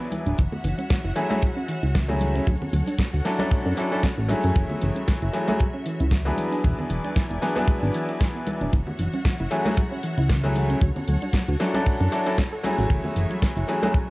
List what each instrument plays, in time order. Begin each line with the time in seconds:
Already playing: grand piano F#3 B3 D4 E4 G#4, string section E4 B4 D5 G#5
0.00 synth arpeggio sound B3
0.12 synth arpeggio sound E3, open hi-hat, high conga
0.26 analog synth bass D1, synth arpeggio sound D4, closed hi-hat
0.38 analog synth bass F#1, synth arpeggio sound E3, string section F#4 C#5 E5 F#5, kick, closed hi-hat
0.52 synth arpeggio sound A3, low conga
0.64 analog synth bass F#1, synth arpeggio sound E3, open hi-hat
0.78 synth arpeggio sound C#4, closed hi-hat, high conga
0.90 synth arpeggio sound E3, kick, snare, closed hi-hat
1.04 analog synth bass F#1, synth arpeggio sound E4, closed hi-hat
1.16 synth arpeggio sound E3, grand piano F#3 A3 C#4 E4 G#4, open hi-hat
1.30 grand piano F#3 A3 C#4 E4 G#4, synth arpeggio sound A3, closed hi-hat, high conga
1.42 synth arpeggio sound F#3, kick, closed hi-hat
1.56 synth arpeggio sound C#4
1.68 synth arpeggio sound E3, open hi-hat
1.83 analog synth bass C#2, synth arpeggio sound E4, closed hi-hat
1.95 synth arpeggio sound E3, kick, snare, closed hi-hat
2.08 grand piano F#3 A3 C#4 E4 G#4, synth arpeggio sound A3, low conga
2.20 synth arpeggio sound E3, open hi-hat, high conga
2.35 synth arpeggio sound C#4, closed hi-hat
2.47 analog synth bass D2, synth arpeggio sound F#3, string section F#4 A4 F#5, kick, closed hi-hat
2.61 synth arpeggio sound C#4, low conga
2.73 analog synth bass D2, synth arpeggio sound F#3, open hi-hat
2.86 synth arpeggio sound D4, open hi-hat, high conga
2.98 synth arpeggio sound F#3, kick, snare, closed hi-hat
3.13 analog synth bass D2, synth arpeggio sound F#4, closed hi-hat
3.25 grand piano F#3 C#4 D4 E4 A4, synth arpeggio sound F#3, snare, open hi-hat
3.39 grand piano F#3 C#4 D4 E4 A4, synth arpeggio sound C#4, closed hi-hat, high conga
3.51 synth arpeggio sound A3, kick, closed hi-hat
3.65 analog synth bass F#2, synth arpeggio sound D4
3.77 grand piano F#3 C#4 D4 E4 A4, synth arpeggio sound C#4, open hi-hat
3.91 grand piano F#3 C#4 D4 E4 A4, synth arpeggio sound D4, closed hi-hat
4.03 synth arpeggio sound C#4, kick, snare, closed hi-hat
4.18 analog synth bass A1, synth arpeggio sound A3
4.28 grand piano F#3 A3 C#4 E4 G#4, synth arpeggio sound D4, open hi-hat, high conga
4.44 analog synth bass F#2, synth arpeggio sound C#4, closed hi-hat
4.55 analog synth bass F#1, synth arpeggio sound E3, string section F#4 E5, kick, closed hi-hat
4.70 synth arpeggio sound A3, low conga
4.81 analog synth bass F#1, synth arpeggio sound E3, open hi-hat
4.95 synth arpeggio sound C#4, closed hi-hat, high conga
5.08 synth arpeggio sound E3, kick, snare, closed hi-hat
5.22 analog synth bass F#1, synth arpeggio sound E4, closed hi-hat
5.33 synth arpeggio sound E3, grand piano F#3 A3 C#4 E4 G#4, open hi-hat
5.47 grand piano F#3 A3 C#4 E4 G#4, synth arpeggio sound A3, closed hi-hat, high conga
5.59 synth arpeggio sound F#3, kick, closed hi-hat
5.74 synth arpeggio sound C#4
5.86 synth arpeggio sound E3, open hi-hat
6.00 analog synth bass C#2, synth arpeggio sound E4, closed hi-hat
6.11 synth arpeggio sound E3, kick, snare, closed hi-hat
6.25 grand piano F#3 B3 D4 E4 G#4, synth arpeggio sound A3, low conga
6.37 synth arpeggio sound E3, string section E4 B4 D5 G#5, open hi-hat, high conga
6.52 synth arpeggio sound D4, closed hi-hat
6.64 analog synth bass E1, synth arpeggio sound E3, kick, closed hi-hat
6.78 synth arpeggio sound B3, low conga
6.90 analog synth bass E1, synth arpeggio sound E3, open hi-hat
7.04 synth arpeggio sound D4, closed hi-hat, high conga
7.16 synth arpeggio sound E3, kick, snare, closed hi-hat
7.30 analog synth bass E1, synth arpeggio sound E4, closed hi-hat
7.42 synth arpeggio sound E3, grand piano F#3 B3 D4 E4 G#4, snare, open hi-hat
7.55 grand piano F#3 B3 D4 E4 G#4, synth arpeggio sound B3, closed hi-hat, high conga
7.68 synth arpeggio sound G#3, kick, closed hi-hat
7.83 analog synth bass G#1, synth arpeggio sound D4
7.95 synth arpeggio sound E3, open hi-hat
8.09 synth arpeggio sound E4, closed hi-hat
8.21 synth arpeggio sound E3, kick, snare, closed hi-hat
8.35 synth arpeggio sound B3
8.47 synth arpeggio sound E3, open hi-hat, high conga
8.61 analog synth bass D1, synth arpeggio sound D4, closed hi-hat
8.73 analog synth bass F#1, synth arpeggio sound E3, string section F#4 C#5 E5 F#5, kick, closed hi-hat
8.87 synth arpeggio sound A3, low conga
8.99 analog synth bass F#1, synth arpeggio sound E3, open hi-hat
9.13 synth arpeggio sound C#4, closed hi-hat, high conga
9.25 synth arpeggio sound E3, kick, snare, closed hi-hat
9.39 analog synth bass F#1, synth arpeggio sound E4, closed hi-hat
9.51 synth arpeggio sound E3, grand piano F#3 A3 C#4 E4 G#4, open hi-hat
9.65 grand piano F#3 A3 C#4 E4 G#4, synth arpeggio sound A3, closed hi-hat, high conga
9.77 synth arpeggio sound F#3, kick, closed hi-hat
9.92 synth arpeggio sound C#4
10.03 synth arpeggio sound E3, open hi-hat
10.17 analog synth bass C#2, synth arpeggio sound E4, closed hi-hat
10.29 synth arpeggio sound E3, kick, snare, closed hi-hat
10.43 grand piano F#3 A3 C#4 E4 G#4, synth arpeggio sound A3, low conga
10.55 synth arpeggio sound E3, open hi-hat, high conga
10.70 synth arpeggio sound C#4, closed hi-hat
10.81 analog synth bass D2, synth arpeggio sound F#3, string section F#4 A4 F#5, kick, closed hi-hat
10.96 synth arpeggio sound C#4, closed hi-hat, low conga
11.08 analog synth bass D2, synth arpeggio sound F#3, open hi-hat
11.21 synth arpeggio sound D4, closed hi-hat, high conga
11.33 synth arpeggio sound F#3, kick, snare, closed hi-hat
11.48 analog synth bass D2, synth arpeggio sound F#4, closed hi-hat
11.60 grand piano F#3 C#4 D4 E4 A4, synth arpeggio sound F#3, snare, open hi-hat
11.74 grand piano F#3 C#4 D4 E4 A4, synth arpeggio sound C#4, closed hi-hat, high conga
11.86 synth arpeggio sound A3, kick, closed hi-hat
12.00 analog synth bass F#2, synth arpeggio sound D4, closed hi-hat
12.12 grand piano F#3 C#4 D4 E4 A4, synth arpeggio sound C#5, open hi-hat
12.26 grand piano F#3 C#4 D4 E4 A4, synth arpeggio sound D4, closed hi-hat
12.38 synth arpeggio sound D4, kick, snare, closed hi-hat
12.52 synth arpeggio sound A4
12.63 grand piano F#3 A3 C#4 E4 G#4, synth arpeggio sound C#4, open hi-hat, high conga
12.78 analog synth bass A1, synth arpeggio sound F#4, closed hi-hat
12.90 analog synth bass F#1, synth arpeggio sound E3, string section F#4 E5, kick, closed hi-hat
13.04 synth arpeggio sound A3, low conga
13.16 analog synth bass F#1, synth arpeggio sound E3, open hi-hat
13.30 synth arpeggio sound F#3, closed hi-hat, high conga
13.42 synth arpeggio sound E3, kick, snare, closed hi-hat
13.57 analog synth bass F#1, synth arpeggio sound E4, closed hi-hat
13.68 synth arpeggio sound E3, grand piano F#3 A3 C#4 E4 G#4, open hi-hat
13.82 grand piano F#3 A3 C#4 E4 G#4, synth arpeggio sound A3, closed hi-hat, high conga
13.94 synth arpeggio sound F#3, kick, closed hi-hat